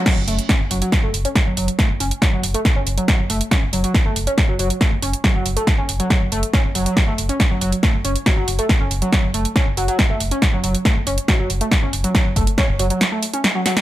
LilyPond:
<<
  \new Staff \with { instrumentName = "Analog synth lead" } { \clef bass \time 4/4 \key fis \minor \tempo 4 = 139 fis16 r16 a16 r16 cis'16 r16 fis16 fis16 r16 a16 r16 cis'16 r16 fis16 fis16 r16 | a16 r16 cis'16 r16 fis16 fis16 r16 a16 r16 cis'16 r16 fis16 fis16 r16 a16 r16 | cis'16 r16 fis16 fis16 r16 a16 r16 cis'16 r16 fis16 fis16 r16 a16 r16 cis'16 r16 | fis16 fis16 r16 a16 r16 cis'16 r16 fis16 fis16 r16 a16 r16 cis'16 r16 fis16 fis16 |
r16 a16 r16 cis'16 r16 fis16 fis16 r16 a16 r16 cis'16 r16 fis16 fis16 r16 a16 | r16 cis'16 r16 fis16 fis16 r16 a16 r16 cis'16 r16 fis16 fis16 r16 a16 r16 cis'16 | r16 fis16 fis16 r16 a16 r16 cis'16 r16 fis16 fis16 r16 a16 r16 cis'16 r16 fis16 | fis16 r16 a16 r16 cis'16 r16 fis16 fis16 r16 a16 r16 cis'16 r16 fis16 fis16 r16 | }
  \new Staff \with { instrumentName = "Sub bass" } { \clef bass \time 4/4 \key fis \minor r16 fis,,16 fis,,16 r8 fis,,16 fis,,16 r8 fis,,16 fis,,16 r8 fis,,16 fis,,16 r16 | r16 fis,,16 fis,,16 r8 fis,,16 fis,,16 r8 fis,,16 fis,,16 r8 fis,,16 fis,,16 r16 | r16 fis,,16 fis,,16 r8 fis,,16 fis,,16 r8 fis,,16 fis,,16 r8 fis,,16 fis,,16 r16 | r16 fis,,16 fis,,16 r8 fis,,16 fis,,16 r8 fis,,16 fis,,16 r8 fis,,16 fis,,16 r16 |
r16 fis,,16 fis,,16 r8 fis,,16 fis,,16 r8 fis,,16 fis,,16 r8 fis,,16 fis,,16 r16 | r16 fis,,16 fis,,16 r8 fis,,16 fis,,16 r8 fis,,16 fis,,16 r8 fis,,16 fis,,16 r16 | r16 fis,,16 fis,,16 r8 fis,,16 fis,,16 r8 fis,,16 fis,,16 r8 fis,,16 fis,,16 r16 | r16 fis,,16 fis,,16 r8 fis,,16 fis,,16 r2 r16 | }
  \new DrumStaff \with { instrumentName = "Drums" } \drummode { \time 4/4 <cymc hh bd sn>8 hho16 hh16 <hh bd sn>8 hho16 hh16 <hh bd sn>8 hho16 hh16 <hh bd sn>8 hho16 hh16 | <hh bd sn>8 hho16 hh16 <hh bd sn>8 hho16 hh16 <hh bd sn>8 hho16 hh16 <hh bd sn>8 hho16 hh16 | <hh bd sn>8 hho16 hh16 <hh bd sn>8 hho16 hh16 <hh bd sn>8 hho16 hh16 <hh bd sn>8 hho16 hh16 | <hh bd sn>8 hho16 hh16 <hh bd sn>8 hho16 hh16 <hh bd sn>8 hho16 hh16 <hh bd sn>8 hho16 hh16 |
<hh bd sn>8 hho16 hh16 <hh bd sn>8 hho16 hh16 <hh bd sn>8 hho16 hh16 <hh bd sn>8 hho16 hh16 | <hh bd sn>8 hho16 hh16 <hh bd sn>8 hho16 hh16 <hh bd sn>8 hho16 hh16 <hh bd sn>8 hho16 hh16 | <hh bd sn>8 hho16 hh16 <hh bd sn>8 hho16 hh16 <hh bd sn>8 hho16 hh16 <hh bd sn>8 hho16 hh16 | <hh bd sn>8 <hho bd>16 hh16 <hh bd sn>8 hho16 hh16 <hh sn>8 hho16 hh16 <hh sn>8 <hho sn>16 <hh sn>16 | }
>>